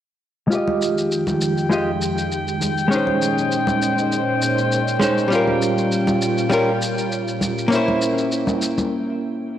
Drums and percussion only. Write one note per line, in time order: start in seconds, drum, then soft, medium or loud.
0.52 shaker soft
0.67 high conga medium
0.82 shaker medium
0.98 shaker soft
1.12 shaker soft
1.27 high conga medium
1.27 shaker soft
1.42 shaker medium
1.58 shaker soft
1.72 shaker soft
2.02 shaker medium
2.18 shaker soft
2.32 shaker soft
2.48 shaker soft
2.61 high conga soft
2.61 shaker medium
2.78 shaker soft
2.92 shaker soft
3.07 high conga medium
3.22 shaker medium
3.38 shaker soft
3.52 shaker soft
3.67 high conga medium
3.67 shaker soft
3.82 shaker medium
3.98 shaker soft
4.12 shaker soft
4.42 shaker medium
4.58 shaker soft
4.72 shaker soft
4.88 shaker soft
5.01 high conga medium
5.01 shaker medium
5.18 shaker soft
5.32 shaker soft
5.48 high conga medium
5.62 shaker medium
5.78 shaker soft
5.92 shaker soft
6.07 high conga medium
6.07 shaker soft
6.22 shaker medium
6.38 shaker soft
6.52 shaker soft
6.82 shaker medium
6.98 shaker soft
7.12 shaker soft
7.28 shaker soft
7.41 high conga medium
7.41 shaker medium
7.58 shaker soft
7.72 shaker soft
7.88 high conga medium
8.02 shaker medium
8.18 shaker soft
8.32 shaker soft
8.47 high conga medium
8.47 shaker soft
8.62 shaker medium
8.78 high conga medium
8.78 shaker soft